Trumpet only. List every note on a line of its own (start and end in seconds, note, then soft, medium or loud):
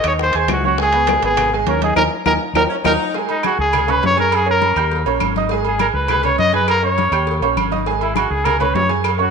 0.07 0.13 C#5 medium
0.22 0.35 C5 loud
0.38 0.50 C5 medium
0.53 0.64 F#4 medium
0.66 0.79 F#4 medium
0.82 1.21 G#4 loud
1.25 1.51 G#4 loud
1.69 1.82 A#4 medium
1.84 1.95 G#4 loud
1.96 2.03 A#4 loud
2.26 2.33 A#4 loud
2.56 2.63 A#4 loud
2.86 2.93 A#4 loud
3.30 3.43 D#4 medium
3.46 3.59 F#4 medium
3.60 3.91 G#4 loud
3.90 4.04 B4 loud
4.06 4.18 C#5 loud
4.20 4.37 A#4 loud
4.35 4.48 G#4 loud
4.50 5.04 A#4 loud
5.67 5.80 G#4 medium
5.81 5.87 A#4 medium
5.94 6.08 B4 medium
6.10 6.23 B4 loud
6.25 6.38 C#5 loud
6.39 6.52 D#5 loud
6.55 6.68 B4 loud
6.69 6.83 A#4 loud
6.85 7.39 C#5 loud
8.02 8.12 E4 medium
8.13 8.30 F#4 medium
8.13 8.18 G#4 medium
8.30 8.46 G#4 medium
8.45 8.59 A#4 loud
8.60 8.76 B4 medium
8.75 8.90 C#5 loud
9.21 9.30 F#4 medium